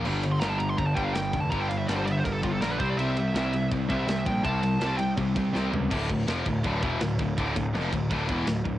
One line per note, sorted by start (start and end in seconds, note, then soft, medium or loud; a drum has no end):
0.05 0.38 G1 medium
0.05 0.22 G2 medium
0.05 0.23 D3 loud
0.05 0.23 G3 loud
0.05 crash medium
0.23 0.40 G2 medium
0.23 0.41 D3 medium
0.23 ride medium
0.32 0.40 C6 loud
0.40 0.74 G1 medium
0.40 0.58 G2 medium
0.40 0.59 D3 medium
0.40 0.60 G3 loud
0.40 0.49 A#5 medium
0.40 snare loud
0.40 ride medium
0.49 0.59 A5 medium
0.59 0.76 G2 medium
0.59 0.77 D3 medium
0.59 0.69 A#5 loud
0.59 ride medium
0.69 0.78 C6 loud
0.77 0.95 G1 medium
0.77 0.94 G2 medium
0.77 0.95 D3 medium
0.77 0.86 A#5 loud
0.77 kick medium
0.77 ride medium
0.87 0.96 A5 medium
0.94 1.13 G1 medium
0.94 1.13 G2 medium
0.94 1.14 D3 medium
0.94 1.14 G3 loud
0.94 1.04 G5 loud
0.94 kick medium
0.94 ride medium
1.04 1.14 F5 medium
1.14 1.31 G1 medium
1.14 1.32 G2 medium
1.14 1.32 D3 medium
1.14 1.53 G3 medium
1.14 1.40 G5 medium
1.14 snare loud
1.14 ride medium
1.33 1.49 F1 loud
1.33 1.50 G2 medium
1.33 1.50 D3 medium
1.33 kick medium
1.33 ride medium
1.40 1.50 A5 loud
1.51 1.84 G1 medium
1.51 1.69 G2 medium
1.51 1.69 D3 loud
1.51 1.69 G3 loud
1.51 1.60 A#5 loud
1.51 kick loud
1.51 ride loud
1.60 1.68 G5 medium
1.68 1.86 G2 medium
1.68 1.87 D3 medium
1.68 1.78 F5 medium
1.68 ride medium
1.78 1.88 E5 medium
1.87 2.21 G1 medium
1.87 2.05 G2 medium
1.87 2.06 D3 medium
1.87 2.06 G3 loud
1.87 1.96 D5 medium
1.87 snare loud
1.87 ride loud
1.96 2.06 C5 medium
2.07 2.23 G2 medium
2.07 2.23 D3 medium
2.07 2.12 D5 medium
2.07 ride medium
2.12 2.18 E5 loud
2.18 2.24 C5 medium
2.25 2.41 G1 medium
2.25 2.41 G2 medium
2.25 2.42 D3 medium
2.25 2.33 A#4 medium
2.25 kick medium
2.25 ride loud
2.33 2.42 A4 medium
2.42 2.59 G1 medium
2.42 2.60 G2 medium
2.42 2.60 D3 medium
2.42 2.63 G3 medium
2.42 2.52 F4 soft
2.42 kick medium
2.42 ride medium
2.52 2.61 A4 medium
2.61 2.77 A#1 medium
2.61 2.78 G2 medium
2.61 2.79 D3 loud
2.61 2.79 G3 medium
2.61 2.70 A#4 medium
2.61 snare loud
2.61 ride loud
2.72 2.79 B4 medium
2.79 2.96 C2 medium
2.79 2.97 C3 medium
2.79 2.97 G3 medium
2.79 2.97 C4 loud
2.79 2.88 C5 loud
2.79 kick loud
2.79 ride medium
2.90 2.98 D5 medium
2.97 3.30 C2 medium
2.97 3.15 C3 medium
2.97 3.16 G3 loud
2.97 3.16 C4 loud
2.97 3.67 E5 medium
2.97 ride loud
3.17 3.33 C3 medium
3.17 3.33 G3 medium
3.17 ride medium
3.34 3.67 C2 loud
3.34 3.53 C3 medium
3.34 3.53 G3 medium
3.34 3.53 C4 medium
3.34 snare loud
3.34 ride medium
3.53 3.70 C3 medium
3.53 3.70 G3 medium
3.53 ride medium
3.71 3.88 C2 loud
3.71 3.88 C3 medium
3.71 3.89 G3 loud
3.71 kick medium
3.71 ride loud
3.89 4.06 C2 loud
3.89 4.07 C3 loud
3.89 4.08 G3 loud
3.89 4.08 C4 loud
3.89 4.23 E5 loud
3.89 kick medium
3.89 ride medium
4.07 4.24 C2 medium
4.07 4.25 C3 medium
4.07 4.25 G3 loud
4.07 4.44 C4 medium
4.07 snare loud
4.07 ride loud
4.26 4.42 A#1 loud
4.26 4.43 C3 medium
4.26 4.43 G3 medium
4.26 4.44 G5 medium
4.26 kick medium
4.26 ride medium
4.45 4.77 C2 medium
4.45 4.62 C3 loud
4.45 4.62 G3 loud
4.45 4.63 C4 loud
4.45 4.96 A5 loud
4.45 kick loud
4.45 ride loud
4.63 4.79 C3 medium
4.63 4.80 G3 medium
4.63 ride medium
4.81 5.13 C2 loud
4.81 4.97 C3 medium
4.81 4.98 G3 medium
4.81 4.99 C4 medium
4.81 snare loud
4.81 ride loud
4.98 5.15 C3 medium
4.98 5.16 G3 medium
4.98 5.09 G5 loud
4.98 ride medium
5.17 5.34 C2 loud
5.17 5.34 C3 medium
5.17 5.34 G3 medium
5.17 kick medium
5.17 ride loud
5.36 5.52 C2 medium
5.36 5.53 C3 medium
5.36 5.53 G3 medium
5.36 5.53 C4 medium
5.36 kick medium
5.36 ride medium
5.54 5.70 C2 loud
5.54 5.71 C3 medium
5.54 5.72 G3 medium
5.54 5.72 C4 loud
5.54 snare medium
5.72 5.89 C#2 loud
5.72 5.89 C3 medium
5.72 5.89 G3 medium
5.72 floor tom medium
5.91 6.08 D1 medium
5.91 6.09 D2 loud
5.91 6.09 A2 loud
5.91 6.09 D3 loud
5.91 kick loud
5.91 crash loud
6.10 6.26 D1 medium
6.10 6.24 D2 medium
6.10 6.25 A2 medium
6.10 kick loud
6.10 ride medium
6.27 6.44 F1 loud
6.27 6.45 F2 medium
6.27 6.46 C3 loud
6.27 6.46 F3 loud
6.27 snare loud
6.27 ride medium
6.46 6.63 D1 medium
6.46 6.61 D2 medium
6.46 6.61 A2 medium
6.46 kick medium
6.46 ride medium
6.64 6.81 D1 medium
6.64 6.82 D2 loud
6.64 6.83 A2 loud
6.64 6.83 D3 loud
6.64 kick loud
6.64 ride loud
6.83 6.99 E1 loud
6.83 7.01 E2 medium
6.83 7.01 B2 loud
6.83 7.01 E3 medium
6.83 kick loud
6.83 ride medium
7.01 7.18 D1 medium
7.01 7.16 D2 medium
7.01 7.16 A2 medium
7.01 snare loud
7.01 ride loud
7.19 7.36 D1 medium
7.19 7.34 D2 medium
7.19 7.34 A2 medium
7.19 kick loud
7.19 ride medium
7.38 7.55 D1 medium
7.38 7.55 D2 loud
7.38 7.56 A2 loud
7.38 7.56 D3 loud
7.38 kick loud
7.38 ride loud
7.56 7.73 D1 medium
7.56 7.70 D2 medium
7.56 7.71 A2 medium
7.56 kick loud
7.56 ride medium
7.74 7.91 F1 loud
7.74 7.92 F2 loud
7.74 7.92 C3 loud
7.74 7.92 F3 loud
7.74 snare loud
7.74 ride loud
7.93 8.09 D1 medium
7.93 8.07 D2 medium
7.93 8.07 A2 medium
7.93 kick medium
7.93 ride medium
8.11 8.28 D1 loud
8.11 8.29 D2 loud
8.11 8.29 A2 loud
8.11 8.30 D3 loud
8.11 kick loud
8.11 ride loud
8.29 8.46 E1 medium
8.29 8.47 E2 medium
8.29 8.47 B2 loud
8.29 8.48 E3 loud
8.29 kick loud
8.29 ride medium
8.47 8.64 D1 medium
8.47 8.62 D2 medium
8.47 8.62 A2 medium
8.47 snare loud
8.47 ride loud
8.65 8.79 D1 medium
8.65 8.79 D2 medium
8.65 8.79 A2 medium
8.65 kick medium
8.65 ride medium